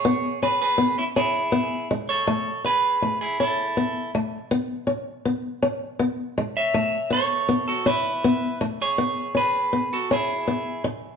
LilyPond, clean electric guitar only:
\new Staff \with { instrumentName = "Clean electric guitar" } { \time 12/8 \key a \major \tempo 4. = 107 <gis' cis''>4 <gis' b'>8 <gis' b'>4 <cis' e'>8 <e' gis'>2 r8 <a' cis''>8~ | <a' cis''>4 <gis' b'>4. <e' gis'>8 <e' a'>2 r4 | r1 r4. <cis'' e''>8~ | <cis'' e''>4 <a' cis''>4. <fis' a'>8 <e' b'>2 r8 <gis' cis''>8~ |
<gis' cis''>4 <gis' b'>4. <fis' a'>8 <e' gis'>2 r4 | }